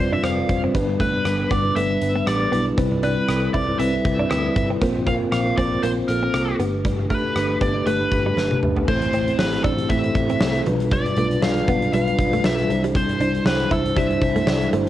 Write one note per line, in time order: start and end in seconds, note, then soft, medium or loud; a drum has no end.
0.00 0.17 F1 medium
0.00 0.23 G3 medium
0.00 0.23 C4 medium
0.00 0.24 F4 medium
0.00 0.75 B4 medium
0.00 0.24 C5 medium
0.00 0.76 D5 medium
0.12 0.22 D4 medium
0.12 0.24 E5 medium
0.23 0.42 F1 medium
0.23 0.43 G3 medium
0.23 0.43 C4 medium
0.23 0.36 C4 medium
0.23 0.43 F4 medium
0.23 0.44 C5 medium
0.23 0.61 F5 medium
0.23 cross-stick loud
0.23 closed hi-hat medium
0.49 0.68 F1 medium
0.49 0.69 G3 medium
0.49 0.69 C4 medium
0.49 0.69 F4 medium
0.49 0.69 C5 medium
0.49 muted clean electric guitar stroke soft
0.49 kick medium
0.49 closed hi-hat medium
0.64 0.73 C4 medium
0.74 1.11 G1 medium
0.74 1.47 G2 medium
0.74 0.94 G3 loud
0.74 0.86 G3 medium
0.74 0.94 B3 medium
0.74 0.94 D4 medium
0.74 0.95 B4 loud
0.74 kick medium
0.74 closed hi-hat medium
0.89 muted clean electric guitar stroke soft
1.00 1.20 G3 medium
1.00 1.12 A3 medium
1.00 1.20 B3 medium
1.00 1.20 D4 medium
1.00 1.53 B4 medium
1.00 kick medium
1.00 closed hi-hat medium
1.25 1.44 G1 medium
1.25 1.45 G3 medium
1.25 1.45 B3 medium
1.25 1.46 D4 medium
1.25 1.46 B4 medium
1.25 cross-stick medium
1.25 closed hi-hat medium
1.50 1.69 G1 medium
1.50 1.70 G3 medium
1.50 1.70 B3 medium
1.50 1.63 B3 medium
1.50 1.71 D4 medium
1.50 1.71 B4 medium
1.50 1.76 D5 medium
1.50 kick medium
1.50 closed hi-hat medium
1.76 1.95 G1 medium
1.76 1.96 G3 medium
1.76 1.88 A3 medium
1.76 1.96 B3 medium
1.76 1.96 D4 medium
1.76 1.96 B4 medium
1.76 2.27 E5 loud
1.76 closed hi-hat medium
1.90 muted clean electric guitar stroke soft
2.01 2.20 G1 medium
2.01 2.21 G3 medium
2.01 2.21 B3 medium
2.01 2.21 D4 medium
2.01 2.22 B4 medium
2.01 closed hi-hat medium
2.16 2.25 B3 medium
2.27 2.46 A1 medium
2.27 2.47 G3 medium
2.27 2.47 B3 medium
2.27 2.47 D4 medium
2.27 2.47 G4 medium
2.27 2.64 D5 medium
2.27 cross-stick loud
2.27 closed hi-hat medium
2.52 2.71 B1 medium
2.52 2.72 G3 medium
2.52 2.72 B3 medium
2.52 2.64 B3 medium
2.52 2.72 D4 medium
2.52 2.73 E4 medium
2.52 closed hi-hat medium
2.77 3.15 C2 loud
2.77 3.50 C3 medium
2.77 2.97 G3 loud
2.77 2.97 C4 medium
2.77 2.90 C4 medium
2.77 2.98 E4 medium
2.77 2.98 B4 loud
2.77 kick loud
2.77 closed hi-hat medium
2.92 muted clean electric guitar stroke soft
3.03 3.23 G3 medium
3.03 3.23 C4 medium
3.03 3.15 D4 medium
3.03 3.23 E4 medium
3.03 3.51 B4 medium
3.03 3.23 D5 medium
3.03 closed hi-hat medium
3.28 3.47 C2 medium
3.28 3.48 G3 medium
3.28 3.49 C4 medium
3.28 3.49 E4 medium
3.28 3.49 A4 medium
3.28 cross-stick medium
3.28 closed hi-hat medium
3.53 3.73 C2 medium
3.53 3.74 G3 medium
3.53 3.74 C4 medium
3.53 3.66 E4 medium
3.53 3.74 E4 medium
3.53 3.74 C5 medium
3.53 3.79 D5 medium
3.53 kick medium
3.53 closed hi-hat medium
3.79 3.98 C2 medium
3.79 3.99 G3 medium
3.79 3.99 C4 medium
3.79 3.92 C4 medium
3.79 3.99 E4 medium
3.79 4.00 B4 loud
3.79 4.29 E5 loud
3.79 closed hi-hat medium
3.94 muted clean electric guitar stroke soft
4.05 4.23 C2 loud
4.05 4.25 G3 medium
4.05 4.25 C4 medium
4.05 4.25 E4 medium
4.05 4.25 B4 medium
4.05 kick medium
4.05 closed hi-hat medium
4.19 4.29 D4 medium
4.30 4.49 D2 medium
4.30 4.50 G3 medium
4.30 4.50 C4 medium
4.30 4.42 C4 medium
4.30 4.50 E4 medium
4.30 4.51 B4 medium
4.30 4.67 E5 medium
4.30 cross-stick loud
4.30 closed hi-hat medium
4.56 4.74 G1 medium
4.56 4.75 G3 medium
4.56 4.76 C4 medium
4.56 4.76 E4 medium
4.56 4.76 B4 medium
4.56 muted clean electric guitar stroke soft
4.56 kick medium
4.56 closed hi-hat medium
4.70 4.80 C4 medium
4.81 5.18 A#1 medium
4.81 5.54 A#2 medium
4.81 5.01 A#3 loud
4.81 4.93 A#3 medium
4.81 5.01 C4 medium
4.81 5.01 F4 medium
4.81 5.02 C5 loud
4.81 kick loud
4.81 closed hi-hat medium
4.96 muted clean electric guitar stroke soft
5.06 5.26 A#3 medium
5.06 5.26 C4 medium
5.06 5.19 C4 medium
5.06 5.27 F4 medium
5.06 5.27 A#4 medium
5.06 5.14 F5 loud
5.06 kick medium
5.06 closed hi-hat medium
5.32 5.51 A#1 medium
5.32 5.52 A#3 medium
5.32 5.52 C4 medium
5.32 5.52 F4 medium
5.32 5.52 C5 medium
5.32 5.57 F5 medium
5.32 cross-stick loud
5.32 closed hi-hat medium
5.57 5.76 A#1 medium
5.57 5.77 A#3 medium
5.57 5.77 C4 medium
5.57 5.70 C4 medium
5.57 5.77 F4 medium
5.57 5.78 C5 medium
5.57 5.84 D5 medium
5.57 kick medium
5.57 closed hi-hat medium
5.82 6.01 A#1 loud
5.82 6.03 A#3 medium
5.82 5.95 A#3 medium
5.82 6.03 C4 medium
5.82 6.03 F4 medium
5.82 5.89 C5 medium
5.82 6.03 C5 loud
5.82 closed hi-hat medium
5.97 muted clean electric guitar stroke soft
6.08 6.27 A#1 medium
6.08 6.28 A#3 medium
6.08 6.28 C4 medium
6.08 6.28 F4 medium
6.08 6.29 A4 medium
6.08 6.56 A#4 medium
6.08 closed hi-hat medium
6.23 6.32 C4 medium
6.33 6.52 C2 medium
6.33 6.53 A#3 medium
6.33 6.54 C4 medium
6.33 6.54 F4 medium
6.33 6.54 C5 medium
6.33 cross-stick loud
6.33 closed hi-hat medium
6.59 7.14 G1 medium
6.59 7.32 G2 medium
6.59 7.01 A3 medium
6.59 6.71 B3 medium
6.59 7.01 D4 medium
6.59 7.01 G4 medium
6.59 7.02 B4 medium
6.59 closed hi-hat medium
6.85 6.97 G3 medium
6.85 kick medium
6.85 closed hi-hat medium
6.99 muted clean electric guitar stroke soft
7.10 7.30 A3 medium
7.10 7.22 A3 medium
7.10 7.30 D4 medium
7.10 7.30 G4 medium
7.10 7.30 A4 medium
7.10 7.58 B4 medium
7.10 kick medium
7.10 closed hi-hat medium
7.35 7.54 G1 medium
7.35 7.55 A3 medium
7.35 7.55 D4 medium
7.35 7.56 G4 medium
7.35 7.56 B4 medium
7.35 cross-stick loud
7.35 closed hi-hat medium
7.61 7.79 G1 medium
7.61 7.81 A3 medium
7.61 7.73 B3 medium
7.61 7.81 D4 medium
7.61 7.81 G4 medium
7.61 7.81 B4 medium
7.61 7.86 D5 loud
7.61 kick medium
7.61 closed hi-hat medium
7.86 8.05 G1 medium
7.86 8.06 A3 medium
7.86 7.99 A3 medium
7.86 8.06 D4 medium
7.86 8.06 G4 medium
7.86 8.59 B4 medium
7.86 8.06 B4 medium
7.86 closed hi-hat medium
8.01 muted clean electric guitar stroke soft
8.12 8.30 G1 medium
8.12 8.32 A3 medium
8.12 8.32 D4 medium
8.12 8.32 G4 medium
8.12 8.32 B4 medium
8.12 kick medium
8.12 closed hi-hat medium
8.26 8.36 G3 medium
8.37 8.56 G1 medium
8.37 8.57 A3 medium
8.37 8.49 A3 medium
8.37 8.57 D4 medium
8.37 8.57 G4 medium
8.37 8.57 B4 medium
8.37 snare soft
8.51 high tom medium
8.63 8.81 G1 medium
8.63 8.82 A3 medium
8.63 8.83 D4 medium
8.63 8.83 G4 medium
8.63 8.83 B4 medium
8.63 muted clean electric guitar stroke soft
8.63 mid tom medium
8.76 8.87 B3 medium
8.76 floor tom medium
8.88 9.06 A1 medium
8.88 9.61 A2 medium
8.88 9.08 A3 medium
8.88 9.00 A3 medium
8.88 9.08 C4 medium
8.88 9.08 E4 medium
8.88 9.41 C5 medium
8.88 9.09 C5 medium
8.88 kick loud
8.88 crash medium
9.02 muted clean electric guitar stroke soft
9.02 closed hi-hat medium
9.13 9.32 A1 medium
9.13 9.33 A3 medium
9.13 9.33 C4 medium
9.13 9.26 C4 medium
9.13 9.34 E4 medium
9.13 9.34 C5 medium
9.13 closed hi-hat medium
9.28 closed hi-hat soft
9.39 9.57 A1 medium
9.39 9.59 A3 medium
9.39 9.59 C4 medium
9.39 9.59 E4 medium
9.39 9.59 G4 medium
9.39 9.64 B4 medium
9.39 snare loud
9.53 closed hi-hat soft
9.64 9.83 A1 medium
9.64 9.84 A3 medium
9.64 9.85 C4 medium
9.64 9.76 D4 medium
9.64 9.85 E4 medium
9.64 9.91 A4 medium
9.64 9.85 C5 medium
9.64 kick medium
9.64 closed hi-hat medium
9.79 closed hi-hat soft
9.89 10.08 A1 medium
9.89 10.10 A3 medium
9.89 10.02 A3 medium
9.89 10.10 C4 medium
9.89 10.10 E4 medium
9.89 10.10 A4 medium
9.89 10.62 E5 medium
9.89 kick medium
9.89 closed hi-hat medium
10.04 muted clean electric guitar stroke soft
10.04 closed hi-hat soft
10.15 10.34 A1 loud
10.15 10.35 A3 medium
10.15 10.35 C4 medium
10.15 10.35 E4 medium
10.15 10.36 C5 medium
10.15 kick medium
10.15 closed hi-hat medium
10.30 10.39 C4 medium
10.30 closed hi-hat medium
10.41 10.59 C2 loud
10.41 10.61 A3 medium
10.41 10.61 C4 medium
10.41 10.61 E4 medium
10.41 10.61 C5 medium
10.41 snare loud
10.55 closed hi-hat soft
10.66 11.03 B1 loud
10.66 11.39 B2 medium
10.66 10.78 F3 medium
10.66 11.08 G3 medium
10.66 11.08 D4 medium
10.66 11.08 F4 medium
10.66 11.08 B4 loud
10.66 closed hi-hat medium
10.80 closed hi-hat medium
10.91 11.04 G3 medium
10.91 11.43 D5 loud
10.91 kick loud
10.91 closed hi-hat medium
11.06 muted clean electric guitar stroke soft
11.06 closed hi-hat medium
11.16 11.35 B1 medium
11.16 11.37 G3 medium
11.16 11.29 A3 medium
11.16 11.37 D4 medium
11.16 11.37 F4 medium
11.16 11.37 B4 medium
11.16 closed hi-hat medium
11.31 closed hi-hat soft
11.42 11.61 B1 loud
11.42 11.62 G3 medium
11.42 11.62 D4 medium
11.42 11.63 F4 medium
11.42 11.63 D5 medium
11.42 11.92 F5 loud
11.42 snare loud
11.56 closed hi-hat soft
11.68 11.86 B1 medium
11.68 11.88 G3 medium
11.68 11.80 B3 medium
11.68 11.88 D4 medium
11.68 11.88 F4 medium
11.68 11.88 B4 medium
11.68 kick medium
11.68 closed hi-hat medium
11.82 closed hi-hat soft
11.93 12.11 B1 medium
11.93 12.13 G3 medium
11.93 12.05 G3 medium
11.93 12.13 D4 medium
11.93 12.13 F4 medium
11.93 12.14 B4 medium
11.93 12.45 F5 loud
11.93 closed hi-hat medium
12.07 muted clean electric guitar stroke soft
12.07 closed hi-hat soft
12.19 12.37 B1 loud
12.19 12.39 G3 medium
12.19 12.39 D4 medium
12.19 12.39 F4 medium
12.19 12.39 B4 medium
12.19 kick medium
12.19 closed hi-hat medium
12.33 12.43 A3 medium
12.33 closed hi-hat medium
12.44 12.62 B1 medium
12.44 12.64 G3 medium
12.44 12.56 G3 medium
12.44 12.64 D4 medium
12.44 12.64 F4 medium
12.44 12.65 B4 medium
12.44 12.81 E5 medium
12.44 snare loud
12.59 closed hi-hat soft
12.69 13.06 C2 medium
12.69 13.42 C3 medium
12.69 13.11 G3 medium
12.69 13.11 D4 medium
12.69 13.12 E4 medium
12.69 muted clean electric guitar stroke soft
12.69 closed hi-hat medium
12.84 12.94 G3 medium
12.84 closed hi-hat medium
12.95 13.07 C4 medium
12.95 13.46 C5 loud
12.95 kick loud
12.95 closed hi-hat medium
13.09 muted clean electric guitar stroke soft
13.09 closed hi-hat soft
13.20 13.39 C2 loud
13.20 13.40 G3 medium
13.20 13.40 D4 medium
13.20 13.32 D4 medium
13.20 13.40 E4 medium
13.20 13.41 C5 medium
13.20 closed hi-hat medium
13.35 closed hi-hat soft
13.45 13.64 C2 loud
13.45 13.66 G3 medium
13.45 13.66 D4 medium
13.45 13.66 E4 medium
13.45 13.72 B4 medium
13.45 13.66 C5 medium
13.45 snare loud
13.60 closed hi-hat soft
13.71 13.90 C2 medium
13.71 13.91 G3 medium
13.71 13.91 D4 medium
13.71 13.83 E4 medium
13.71 13.91 E4 medium
13.71 13.98 A4 medium
13.71 13.91 C5 medium
13.71 kick medium
13.71 closed hi-hat medium
13.86 closed hi-hat soft
13.96 14.15 C2 loud
13.96 14.16 G3 medium
13.96 14.08 G3 medium
13.96 14.16 D4 medium
13.96 14.17 E4 medium
13.96 14.17 C5 loud
13.96 14.69 E5 medium
13.96 kick loud
13.96 closed hi-hat medium
14.11 muted clean electric guitar stroke soft
14.11 closed hi-hat soft
14.21 14.40 C2 loud
14.21 14.41 G3 medium
14.21 14.42 D4 medium
14.21 14.42 E4 medium
14.21 14.42 C5 medium
14.21 kick medium
14.21 closed hi-hat medium
14.36 14.46 A3 medium
14.36 closed hi-hat medium
14.47 14.65 C2 medium
14.47 14.67 G3 medium
14.47 14.67 D4 medium
14.47 14.67 E4 medium
14.47 14.68 D5 medium
14.47 snare loud
14.61 closed hi-hat soft
14.73 14.89 G1 medium
14.73 14.89 G3 medium
14.73 14.85 A3 medium
14.73 14.89 D4 medium
14.73 14.89 E4 medium
14.73 14.89 C5 loud
14.73 closed hi-hat medium